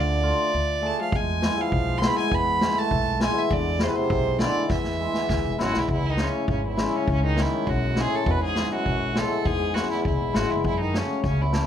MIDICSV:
0, 0, Header, 1, 6, 480
1, 0, Start_track
1, 0, Tempo, 595238
1, 913, Time_signature, 2, 2, 24, 8
1, 9407, End_track
2, 0, Start_track
2, 0, Title_t, "Violin"
2, 0, Program_c, 0, 40
2, 0, Note_on_c, 0, 74, 92
2, 698, Note_on_c, 0, 81, 103
2, 710, Note_off_c, 0, 74, 0
2, 806, Note_off_c, 0, 81, 0
2, 825, Note_on_c, 0, 77, 80
2, 932, Note_on_c, 0, 80, 86
2, 944, Note_off_c, 0, 77, 0
2, 1296, Note_on_c, 0, 77, 90
2, 1308, Note_off_c, 0, 80, 0
2, 1596, Note_on_c, 0, 84, 73
2, 1608, Note_off_c, 0, 77, 0
2, 1672, Note_on_c, 0, 83, 99
2, 1684, Note_off_c, 0, 84, 0
2, 1762, Note_off_c, 0, 83, 0
2, 1767, Note_on_c, 0, 80, 88
2, 1890, Note_on_c, 0, 83, 97
2, 1902, Note_off_c, 0, 80, 0
2, 2243, Note_on_c, 0, 81, 99
2, 2255, Note_off_c, 0, 83, 0
2, 2598, Note_off_c, 0, 81, 0
2, 2608, Note_on_c, 0, 80, 91
2, 2730, Note_on_c, 0, 76, 79
2, 2742, Note_off_c, 0, 80, 0
2, 2842, Note_on_c, 0, 74, 91
2, 2854, Note_off_c, 0, 76, 0
2, 3089, Note_on_c, 0, 72, 72
2, 3101, Note_off_c, 0, 74, 0
2, 3119, Note_on_c, 0, 71, 70
2, 3132, Note_off_c, 0, 72, 0
2, 3191, Note_on_c, 0, 72, 90
2, 3203, Note_off_c, 0, 71, 0
2, 3557, Note_off_c, 0, 72, 0
2, 3561, Note_on_c, 0, 74, 88
2, 3781, Note_off_c, 0, 74, 0
2, 3811, Note_on_c, 0, 76, 78
2, 4491, Note_off_c, 0, 76, 0
2, 4536, Note_on_c, 0, 66, 89
2, 4662, Note_on_c, 0, 64, 78
2, 4674, Note_off_c, 0, 66, 0
2, 4768, Note_off_c, 0, 64, 0
2, 4779, Note_on_c, 0, 64, 79
2, 4887, Note_on_c, 0, 63, 82
2, 4899, Note_off_c, 0, 64, 0
2, 5020, Note_on_c, 0, 61, 72
2, 5032, Note_off_c, 0, 63, 0
2, 5240, Note_off_c, 0, 61, 0
2, 5245, Note_on_c, 0, 61, 67
2, 5352, Note_off_c, 0, 61, 0
2, 5383, Note_on_c, 0, 64, 68
2, 5611, Note_on_c, 0, 61, 73
2, 5624, Note_off_c, 0, 64, 0
2, 5724, Note_off_c, 0, 61, 0
2, 5737, Note_on_c, 0, 61, 86
2, 5839, Note_off_c, 0, 61, 0
2, 5851, Note_on_c, 0, 63, 87
2, 5977, Note_on_c, 0, 64, 74
2, 5989, Note_off_c, 0, 63, 0
2, 6200, Note_on_c, 0, 66, 82
2, 6212, Note_off_c, 0, 64, 0
2, 6453, Note_on_c, 0, 68, 101
2, 6465, Note_off_c, 0, 66, 0
2, 6573, Note_on_c, 0, 69, 89
2, 6585, Note_off_c, 0, 68, 0
2, 6696, Note_on_c, 0, 71, 94
2, 6708, Note_off_c, 0, 69, 0
2, 6802, Note_off_c, 0, 71, 0
2, 6807, Note_on_c, 0, 68, 92
2, 7025, Note_off_c, 0, 68, 0
2, 7056, Note_on_c, 0, 66, 90
2, 7399, Note_on_c, 0, 69, 92
2, 7411, Note_off_c, 0, 66, 0
2, 7628, Note_on_c, 0, 68, 105
2, 7640, Note_off_c, 0, 69, 0
2, 7856, Note_on_c, 0, 66, 84
2, 7868, Note_off_c, 0, 68, 0
2, 7985, Note_off_c, 0, 66, 0
2, 7993, Note_on_c, 0, 64, 79
2, 8099, Note_off_c, 0, 64, 0
2, 8104, Note_on_c, 0, 64, 76
2, 8348, Note_on_c, 0, 66, 90
2, 8360, Note_off_c, 0, 64, 0
2, 8470, Note_on_c, 0, 64, 74
2, 8482, Note_off_c, 0, 66, 0
2, 8591, Note_off_c, 0, 64, 0
2, 8600, Note_on_c, 0, 64, 88
2, 8708, Note_off_c, 0, 64, 0
2, 8711, Note_on_c, 0, 63, 74
2, 8849, Note_on_c, 0, 61, 65
2, 8861, Note_off_c, 0, 63, 0
2, 9070, Note_off_c, 0, 61, 0
2, 9075, Note_on_c, 0, 61, 68
2, 9204, Note_on_c, 0, 64, 74
2, 9216, Note_off_c, 0, 61, 0
2, 9407, Note_off_c, 0, 64, 0
2, 9407, End_track
3, 0, Start_track
3, 0, Title_t, "Hammered dulcimer"
3, 0, Program_c, 1, 15
3, 187, Note_on_c, 1, 65, 64
3, 190, Note_on_c, 1, 57, 51
3, 192, Note_on_c, 1, 62, 51
3, 310, Note_off_c, 1, 65, 0
3, 312, Note_off_c, 1, 57, 0
3, 313, Note_off_c, 1, 62, 0
3, 658, Note_on_c, 1, 57, 56
3, 662, Note_on_c, 1, 68, 73
3, 666, Note_on_c, 1, 62, 52
3, 785, Note_off_c, 1, 57, 0
3, 787, Note_off_c, 1, 68, 0
3, 789, Note_off_c, 1, 62, 0
3, 1153, Note_on_c, 1, 56, 54
3, 1156, Note_on_c, 1, 59, 49
3, 1162, Note_on_c, 1, 64, 65
3, 1274, Note_off_c, 1, 59, 0
3, 1276, Note_off_c, 1, 64, 0
3, 1610, Note_off_c, 1, 56, 0
3, 1617, Note_on_c, 1, 56, 70
3, 1622, Note_on_c, 1, 59, 68
3, 1625, Note_on_c, 1, 64, 69
3, 1748, Note_off_c, 1, 59, 0
3, 1748, Note_off_c, 1, 64, 0
3, 2098, Note_off_c, 1, 56, 0
3, 2108, Note_on_c, 1, 56, 56
3, 2109, Note_on_c, 1, 59, 50
3, 2115, Note_on_c, 1, 64, 69
3, 2231, Note_off_c, 1, 59, 0
3, 2234, Note_off_c, 1, 64, 0
3, 2572, Note_off_c, 1, 56, 0
3, 2582, Note_on_c, 1, 56, 70
3, 2590, Note_on_c, 1, 59, 61
3, 2593, Note_on_c, 1, 64, 73
3, 2712, Note_off_c, 1, 59, 0
3, 2713, Note_off_c, 1, 64, 0
3, 3054, Note_off_c, 1, 56, 0
3, 3060, Note_on_c, 1, 59, 59
3, 3064, Note_on_c, 1, 56, 55
3, 3067, Note_on_c, 1, 64, 64
3, 3187, Note_off_c, 1, 59, 0
3, 3190, Note_off_c, 1, 64, 0
3, 3539, Note_off_c, 1, 56, 0
3, 3549, Note_on_c, 1, 56, 65
3, 3554, Note_on_c, 1, 59, 64
3, 3554, Note_on_c, 1, 64, 76
3, 3674, Note_off_c, 1, 59, 0
3, 3674, Note_off_c, 1, 64, 0
3, 4023, Note_off_c, 1, 56, 0
3, 4033, Note_on_c, 1, 56, 56
3, 4042, Note_on_c, 1, 59, 49
3, 4043, Note_on_c, 1, 64, 57
3, 4158, Note_off_c, 1, 59, 0
3, 4159, Note_off_c, 1, 64, 0
3, 4495, Note_off_c, 1, 56, 0
3, 4501, Note_on_c, 1, 59, 69
3, 4503, Note_on_c, 1, 56, 70
3, 4504, Note_on_c, 1, 64, 88
3, 4628, Note_off_c, 1, 59, 0
3, 4629, Note_off_c, 1, 64, 0
3, 4795, Note_off_c, 1, 56, 0
3, 4984, Note_on_c, 1, 56, 56
3, 4989, Note_on_c, 1, 61, 51
3, 4989, Note_on_c, 1, 64, 54
3, 5112, Note_off_c, 1, 61, 0
3, 5112, Note_off_c, 1, 64, 0
3, 5454, Note_off_c, 1, 56, 0
3, 5459, Note_on_c, 1, 64, 75
3, 5462, Note_on_c, 1, 61, 61
3, 5464, Note_on_c, 1, 56, 62
3, 5587, Note_off_c, 1, 64, 0
3, 5589, Note_off_c, 1, 61, 0
3, 5926, Note_off_c, 1, 56, 0
3, 5936, Note_on_c, 1, 56, 46
3, 5942, Note_on_c, 1, 61, 52
3, 5945, Note_on_c, 1, 64, 53
3, 6069, Note_off_c, 1, 61, 0
3, 6071, Note_off_c, 1, 64, 0
3, 6411, Note_off_c, 1, 56, 0
3, 6418, Note_on_c, 1, 61, 51
3, 6421, Note_on_c, 1, 56, 65
3, 6421, Note_on_c, 1, 64, 71
3, 6547, Note_off_c, 1, 61, 0
3, 6549, Note_off_c, 1, 64, 0
3, 6716, Note_off_c, 1, 56, 0
3, 6903, Note_on_c, 1, 56, 52
3, 6909, Note_on_c, 1, 59, 49
3, 6912, Note_on_c, 1, 64, 60
3, 7033, Note_off_c, 1, 59, 0
3, 7034, Note_off_c, 1, 64, 0
3, 7376, Note_off_c, 1, 56, 0
3, 7385, Note_on_c, 1, 56, 63
3, 7386, Note_on_c, 1, 59, 60
3, 7390, Note_on_c, 1, 64, 69
3, 7510, Note_off_c, 1, 59, 0
3, 7513, Note_off_c, 1, 64, 0
3, 7850, Note_off_c, 1, 56, 0
3, 7859, Note_on_c, 1, 56, 54
3, 7862, Note_on_c, 1, 59, 48
3, 7865, Note_on_c, 1, 64, 55
3, 7988, Note_off_c, 1, 59, 0
3, 7989, Note_off_c, 1, 64, 0
3, 8321, Note_off_c, 1, 56, 0
3, 8330, Note_on_c, 1, 56, 63
3, 8334, Note_on_c, 1, 64, 70
3, 8335, Note_on_c, 1, 59, 55
3, 8463, Note_off_c, 1, 64, 0
3, 8464, Note_off_c, 1, 59, 0
3, 8633, Note_off_c, 1, 56, 0
3, 8817, Note_on_c, 1, 61, 53
3, 8818, Note_on_c, 1, 57, 55
3, 8821, Note_on_c, 1, 66, 53
3, 8944, Note_off_c, 1, 61, 0
3, 8945, Note_off_c, 1, 57, 0
3, 8945, Note_off_c, 1, 66, 0
3, 9291, Note_on_c, 1, 57, 57
3, 9292, Note_on_c, 1, 69, 66
3, 9299, Note_on_c, 1, 61, 52
3, 9407, Note_off_c, 1, 57, 0
3, 9407, Note_off_c, 1, 61, 0
3, 9407, Note_off_c, 1, 69, 0
3, 9407, End_track
4, 0, Start_track
4, 0, Title_t, "Trombone"
4, 0, Program_c, 2, 57
4, 0, Note_on_c, 2, 50, 79
4, 427, Note_off_c, 2, 50, 0
4, 687, Note_on_c, 2, 57, 75
4, 814, Note_on_c, 2, 53, 74
4, 826, Note_off_c, 2, 57, 0
4, 926, Note_on_c, 2, 56, 68
4, 938, Note_off_c, 2, 53, 0
4, 1289, Note_on_c, 2, 53, 81
4, 1302, Note_off_c, 2, 56, 0
4, 1644, Note_on_c, 2, 59, 72
4, 1656, Note_off_c, 2, 53, 0
4, 1758, Note_on_c, 2, 56, 77
4, 1770, Note_off_c, 2, 59, 0
4, 1879, Note_on_c, 2, 59, 69
4, 1892, Note_off_c, 2, 56, 0
4, 2228, Note_off_c, 2, 59, 0
4, 2233, Note_on_c, 2, 57, 79
4, 2568, Note_off_c, 2, 57, 0
4, 2599, Note_on_c, 2, 56, 68
4, 2708, Note_on_c, 2, 52, 68
4, 2720, Note_off_c, 2, 56, 0
4, 2831, Note_off_c, 2, 52, 0
4, 2839, Note_on_c, 2, 50, 59
4, 3084, Note_on_c, 2, 48, 70
4, 3096, Note_off_c, 2, 50, 0
4, 3188, Note_off_c, 2, 48, 0
4, 3193, Note_on_c, 2, 48, 77
4, 3556, Note_on_c, 2, 50, 69
4, 3568, Note_off_c, 2, 48, 0
4, 3778, Note_on_c, 2, 52, 68
4, 3790, Note_off_c, 2, 50, 0
4, 4506, Note_off_c, 2, 52, 0
4, 4512, Note_on_c, 2, 42, 83
4, 4644, Note_on_c, 2, 40, 74
4, 4657, Note_off_c, 2, 42, 0
4, 4760, Note_off_c, 2, 40, 0
4, 4782, Note_on_c, 2, 40, 70
4, 4881, Note_off_c, 2, 40, 0
4, 4898, Note_on_c, 2, 51, 76
4, 5003, Note_on_c, 2, 49, 74
4, 5015, Note_off_c, 2, 51, 0
4, 5227, Note_off_c, 2, 49, 0
4, 5232, Note_on_c, 2, 49, 73
4, 5345, Note_off_c, 2, 49, 0
4, 5366, Note_on_c, 2, 40, 62
4, 5592, Note_on_c, 2, 49, 72
4, 5604, Note_off_c, 2, 40, 0
4, 5714, Note_off_c, 2, 49, 0
4, 5730, Note_on_c, 2, 49, 80
4, 5839, Note_on_c, 2, 51, 92
4, 5852, Note_off_c, 2, 49, 0
4, 6197, Note_on_c, 2, 42, 80
4, 6209, Note_off_c, 2, 51, 0
4, 6440, Note_on_c, 2, 44, 76
4, 6452, Note_off_c, 2, 42, 0
4, 6457, Note_on_c, 2, 42, 64
4, 6469, Note_off_c, 2, 44, 0
4, 6478, Note_on_c, 2, 44, 70
4, 6490, Note_off_c, 2, 42, 0
4, 6532, Note_on_c, 2, 45, 80
4, 6545, Note_off_c, 2, 44, 0
4, 6645, Note_off_c, 2, 45, 0
4, 6650, Note_on_c, 2, 47, 71
4, 6782, Note_on_c, 2, 44, 78
4, 6794, Note_off_c, 2, 47, 0
4, 7033, Note_on_c, 2, 42, 79
4, 7045, Note_off_c, 2, 44, 0
4, 7386, Note_on_c, 2, 45, 72
4, 7398, Note_off_c, 2, 42, 0
4, 7575, Note_off_c, 2, 45, 0
4, 7597, Note_on_c, 2, 45, 53
4, 7640, Note_on_c, 2, 44, 68
4, 7652, Note_off_c, 2, 45, 0
4, 7885, Note_on_c, 2, 42, 68
4, 7897, Note_off_c, 2, 44, 0
4, 7994, Note_off_c, 2, 42, 0
4, 7999, Note_on_c, 2, 40, 73
4, 8108, Note_off_c, 2, 40, 0
4, 8111, Note_on_c, 2, 40, 62
4, 8357, Note_on_c, 2, 42, 65
4, 8369, Note_off_c, 2, 40, 0
4, 8462, Note_on_c, 2, 40, 57
4, 8474, Note_off_c, 2, 42, 0
4, 8587, Note_off_c, 2, 40, 0
4, 8604, Note_on_c, 2, 40, 68
4, 8725, Note_on_c, 2, 51, 76
4, 8738, Note_off_c, 2, 40, 0
4, 8863, Note_on_c, 2, 49, 73
4, 8875, Note_off_c, 2, 51, 0
4, 9086, Note_off_c, 2, 49, 0
4, 9106, Note_on_c, 2, 49, 67
4, 9201, Note_off_c, 2, 49, 0
4, 9207, Note_on_c, 2, 40, 58
4, 9407, Note_off_c, 2, 40, 0
4, 9407, End_track
5, 0, Start_track
5, 0, Title_t, "Upright bass"
5, 0, Program_c, 3, 32
5, 0, Note_on_c, 3, 38, 106
5, 247, Note_off_c, 3, 38, 0
5, 436, Note_on_c, 3, 38, 81
5, 723, Note_off_c, 3, 38, 0
5, 906, Note_on_c, 3, 40, 102
5, 1196, Note_off_c, 3, 40, 0
5, 1387, Note_on_c, 3, 35, 84
5, 1676, Note_off_c, 3, 35, 0
5, 1867, Note_on_c, 3, 40, 101
5, 2157, Note_off_c, 3, 40, 0
5, 2346, Note_on_c, 3, 35, 83
5, 2636, Note_off_c, 3, 35, 0
5, 2827, Note_on_c, 3, 40, 109
5, 3117, Note_off_c, 3, 40, 0
5, 3308, Note_on_c, 3, 35, 90
5, 3598, Note_off_c, 3, 35, 0
5, 3786, Note_on_c, 3, 40, 97
5, 4077, Note_off_c, 3, 40, 0
5, 4265, Note_on_c, 3, 38, 83
5, 4340, Note_off_c, 3, 38, 0
5, 4398, Note_on_c, 3, 28, 75
5, 4504, Note_off_c, 3, 28, 0
5, 4522, Note_on_c, 3, 32, 68
5, 4627, Note_off_c, 3, 32, 0
5, 4643, Note_on_c, 3, 35, 75
5, 4742, Note_off_c, 3, 35, 0
5, 4747, Note_on_c, 3, 37, 84
5, 5038, Note_off_c, 3, 37, 0
5, 5225, Note_on_c, 3, 32, 90
5, 5516, Note_off_c, 3, 32, 0
5, 5706, Note_on_c, 3, 37, 103
5, 5997, Note_off_c, 3, 37, 0
5, 6188, Note_on_c, 3, 35, 97
5, 6478, Note_off_c, 3, 35, 0
5, 6664, Note_on_c, 3, 40, 102
5, 6955, Note_off_c, 3, 40, 0
5, 7143, Note_on_c, 3, 35, 87
5, 7434, Note_off_c, 3, 35, 0
5, 7622, Note_on_c, 3, 40, 101
5, 7913, Note_off_c, 3, 40, 0
5, 8104, Note_on_c, 3, 37, 78
5, 8216, Note_off_c, 3, 37, 0
5, 8228, Note_on_c, 3, 35, 61
5, 8338, Note_off_c, 3, 35, 0
5, 8346, Note_on_c, 3, 32, 68
5, 8457, Note_off_c, 3, 32, 0
5, 8474, Note_on_c, 3, 30, 67
5, 8577, Note_off_c, 3, 30, 0
5, 8581, Note_on_c, 3, 42, 97
5, 8872, Note_off_c, 3, 42, 0
5, 9062, Note_on_c, 3, 37, 94
5, 9352, Note_off_c, 3, 37, 0
5, 9407, End_track
6, 0, Start_track
6, 0, Title_t, "Drums"
6, 906, Note_on_c, 9, 36, 78
6, 987, Note_off_c, 9, 36, 0
6, 1146, Note_on_c, 9, 38, 75
6, 1227, Note_off_c, 9, 38, 0
6, 1387, Note_on_c, 9, 36, 65
6, 1468, Note_off_c, 9, 36, 0
6, 1625, Note_on_c, 9, 38, 85
6, 1706, Note_off_c, 9, 38, 0
6, 1867, Note_on_c, 9, 36, 69
6, 1948, Note_off_c, 9, 36, 0
6, 2106, Note_on_c, 9, 38, 83
6, 2187, Note_off_c, 9, 38, 0
6, 2347, Note_on_c, 9, 36, 68
6, 2428, Note_off_c, 9, 36, 0
6, 2583, Note_on_c, 9, 38, 78
6, 2663, Note_off_c, 9, 38, 0
6, 2828, Note_on_c, 9, 36, 68
6, 2908, Note_off_c, 9, 36, 0
6, 3057, Note_on_c, 9, 38, 75
6, 3137, Note_off_c, 9, 38, 0
6, 3307, Note_on_c, 9, 36, 71
6, 3388, Note_off_c, 9, 36, 0
6, 3539, Note_on_c, 9, 38, 85
6, 3620, Note_off_c, 9, 38, 0
6, 3779, Note_on_c, 9, 38, 41
6, 3788, Note_on_c, 9, 36, 76
6, 3860, Note_off_c, 9, 38, 0
6, 3868, Note_off_c, 9, 36, 0
6, 3903, Note_on_c, 9, 38, 38
6, 3984, Note_off_c, 9, 38, 0
6, 4144, Note_on_c, 9, 38, 50
6, 4225, Note_off_c, 9, 38, 0
6, 4265, Note_on_c, 9, 38, 62
6, 4268, Note_on_c, 9, 36, 61
6, 4345, Note_off_c, 9, 38, 0
6, 4348, Note_off_c, 9, 36, 0
6, 4509, Note_on_c, 9, 38, 68
6, 4589, Note_off_c, 9, 38, 0
6, 4625, Note_on_c, 9, 38, 59
6, 4705, Note_off_c, 9, 38, 0
6, 4746, Note_on_c, 9, 36, 65
6, 4826, Note_off_c, 9, 36, 0
6, 4975, Note_on_c, 9, 38, 64
6, 5056, Note_off_c, 9, 38, 0
6, 5226, Note_on_c, 9, 36, 68
6, 5306, Note_off_c, 9, 36, 0
6, 5461, Note_on_c, 9, 38, 76
6, 5542, Note_off_c, 9, 38, 0
6, 5706, Note_on_c, 9, 36, 61
6, 5786, Note_off_c, 9, 36, 0
6, 5940, Note_on_c, 9, 38, 75
6, 6021, Note_off_c, 9, 38, 0
6, 6185, Note_on_c, 9, 36, 68
6, 6265, Note_off_c, 9, 36, 0
6, 6416, Note_on_c, 9, 38, 75
6, 6496, Note_off_c, 9, 38, 0
6, 6664, Note_on_c, 9, 36, 70
6, 6745, Note_off_c, 9, 36, 0
6, 6897, Note_on_c, 9, 38, 72
6, 6978, Note_off_c, 9, 38, 0
6, 7144, Note_on_c, 9, 36, 57
6, 7225, Note_off_c, 9, 36, 0
6, 7381, Note_on_c, 9, 38, 79
6, 7462, Note_off_c, 9, 38, 0
6, 7625, Note_on_c, 9, 36, 61
6, 7705, Note_off_c, 9, 36, 0
6, 7865, Note_on_c, 9, 38, 69
6, 7946, Note_off_c, 9, 38, 0
6, 7988, Note_on_c, 9, 38, 29
6, 8068, Note_off_c, 9, 38, 0
6, 8105, Note_on_c, 9, 36, 67
6, 8186, Note_off_c, 9, 36, 0
6, 8341, Note_on_c, 9, 38, 79
6, 8422, Note_off_c, 9, 38, 0
6, 8585, Note_on_c, 9, 36, 60
6, 8666, Note_off_c, 9, 36, 0
6, 8822, Note_on_c, 9, 38, 73
6, 8903, Note_off_c, 9, 38, 0
6, 9058, Note_on_c, 9, 38, 24
6, 9062, Note_on_c, 9, 36, 59
6, 9139, Note_off_c, 9, 38, 0
6, 9142, Note_off_c, 9, 36, 0
6, 9295, Note_on_c, 9, 38, 77
6, 9376, Note_off_c, 9, 38, 0
6, 9407, End_track
0, 0, End_of_file